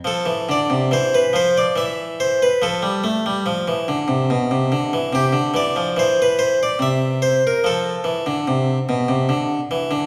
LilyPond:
<<
  \new Staff \with { instrumentName = "Harpsichord" } { \time 3/4 \key f \lydian \tempo 4 = 72 a'8 d''8 c''16 b'16 c''16 d''16 e''8 c''16 b'16 | a'2. | g'8 d''8 c''16 b'16 c''16 d''16 e''8 c''16 bes'16 | a'2. | }
  \new Staff \with { instrumentName = "Harpsichord" } { \clef bass \time 3/4 \key f \lydian f16 e16 d16 c16 e8 f8 e4 | f16 g16 a16 g16 f16 e16 d16 c16 b,16 c16 d16 e16 | c16 d16 e16 f16 e4 c4 | f8 e16 d16 c8 b,16 c16 d8 e16 d16 | }
>>